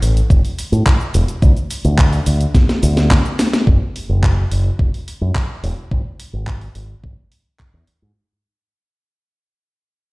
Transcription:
0.02 fingered electric bass A1, open hi-hat, cabasa
0.17 closed hi-hat, cabasa
0.30 fingered electric bass E1, kick, closed hi-hat, cabasa
0.45 open hi-hat, cabasa
0.59 open hi-hat, cabasa
0.72 fingered electric bass A2, closed hi-hat, cabasa
0.86 kick, clap, closed hi-hat, cabasa
1.00 closed hi-hat, cabasa
1.14 fingered electric bass E1, open hi-hat, cabasa
1.28 closed hi-hat, cabasa
1.42 fingered electric bass D2, kick, closed hi-hat, cabasa
1.57 closed hi-hat, cabasa
1.71 open hi-hat, cabasa
1.85 fingered electric bass D2, closed hi-hat, cabasa
1.98 kick, clap, closed hi-hat, cabasa
2.13 open hi-hat, cabasa
2.26 fingered electric bass D2, open hi-hat, cabasa
2.41 closed hi-hat, cabasa
2.55 kick, snare, closed hi-hat, cabasa
2.69 snare, closed hi-hat, cabasa
2.83 fingered electric bass D2, open hi-hat, cabasa
2.97 snare, closed hi-hat, cabasa
3.11 kick, snare, clap, closed hi-hat, cabasa
3.25 closed hi-hat, cabasa
3.39 snare, open hi-hat, cabasa
3.53 snare, closed hi-hat, cabasa
3.67 fingered electric bass F#1, kick
3.96 open hi-hat
4.09 fingered electric bass F#1
4.23 kick, clap
4.52 fingered electric bass F#1, open hi-hat
4.79 fingered electric bass E1, kick
4.94 open hi-hat
5.08 open hi-hat
5.21 fingered electric bass F#2
5.35 kick, clap
5.63 fingered electric bass E1, open hi-hat
5.91 fingered electric bass G#1, kick
6.20 open hi-hat
6.33 fingered electric bass G#1
6.47 kick, clap
6.61 open hi-hat
6.75 fingered electric bass G#1, open hi-hat
7.04 fingered electric bass G#1, kick
7.32 open hi-hat
7.59 kick, clap
7.74 fingered electric bass E2
7.87 muted fingered electric bass stroke, open hi-hat
8.02 fingered electric bass G#2

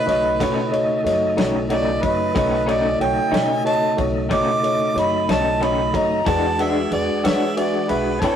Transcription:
Already playing: tonewheel organ C#3 A3 D#4, harmonica B4
0.06 upright bass B1, grand piano F#4 A4 C#5 D#5, snare, ride
0.40 upright bass B2, clean electric guitar B2 A3 C#4 D#4, grand piano F#4 A4 C#5 F#5, kick, ride
0.71 grand piano F#4 A4 C#5 D#5, ride
1.04 upright bass F#2, grand piano F#4 A4 C#5 D#5, ride
1.08 snare
1.36 upright bass B1, clean electric guitar A3 C#4 D#4, grand piano F#4 A4 C#5 F#5, snare, ride
1.69 clean electric guitar B2 A3 C#4 D#4, grand piano F#4 A4 C#5 D#5, harmonica D5, ride
2.01 upright bass F#2, grand piano F#4 A4 C#5 D#5, harmonica B4, kick, ride
2.34 upright bass B1, clean electric guitar B2 A3 C#4 D#4, tonewheel organ C#3 A3 D#4, grand piano F#4 A4 C#5 D#5, kick, ride
2.66 clean electric guitar A3 C#4 D#4, grand piano F#4 A4 C#5 D#5, harmonica D5, ride
2.99 upright bass B1, grand piano F#4 A4 C#5 F#5, harmonica G5, ride
3.31 upright bass B2, clean electric guitar A3 C#4 D#4, grand piano F#4 A4 C#5 D#5, ride
3.35 snare
3.64 grand piano F#4 A4 C#5 D#5, harmonica A5, ride
3.96 upright bass B1, grand piano F#4 A4 C#5 F#5, kick, ride
4.29 clean electric guitar B2 A3 C#4 D#4, upright bass B2, grand piano F#4 A4 C#5 D#5, harmonica D6, kick, ride
4.62 grand piano F#4 A4 C#5 D#5, ride
4.94 upright bass F#2, grand piano F#4 A4 C#5 D#5, ride
4.99 harmonica B5
5.28 upright bass B1, clean electric guitar A3 C#4 D#4, grand piano F#4 A4 C#5 D#5, harmonica A5, snare, ride
5.60 clean electric guitar B2 A3 C#4 D#4, grand piano F#4 A4 C#5 D#5, harmonica B5, ride
5.93 upright bass F#2, grand piano F#4 A4 C#5 D#5, harmonica A#5, kick, ride
6.24 upright bass E2, clean electric guitar E3 G#3 D4 F#4, tonewheel organ G#3 D4 F#4, grand piano F#4 G#4 B4 D5, harmonica A5, kick, ride
6.58 clean electric guitar D4 F#4, grand piano F#4 G#4 B4 D5, harmonica E5, ride
6.63 clean electric guitar G#3
6.90 upright bass E2, grand piano F#4 G#4 B4 D5, harmonica D5, ride
7.23 upright bass E3, clean electric guitar G#3 D4 F#4, grand piano F#4 G#4 B4 C#5, harmonica E5, snare, ride
7.56 grand piano F#4 G#4 B4 E5, harmonica D5, ride
7.88 upright bass B1, grand piano F#4 G#4 B4 E5, harmonica B4, ride
8.19 upright bass A1, tonewheel organ C4 D4 G#5, grand piano E4 G4 B4, harmonica A4, kick, ride
8.23 clean electric guitar A3 C#4 G4 B4, grand piano C#5

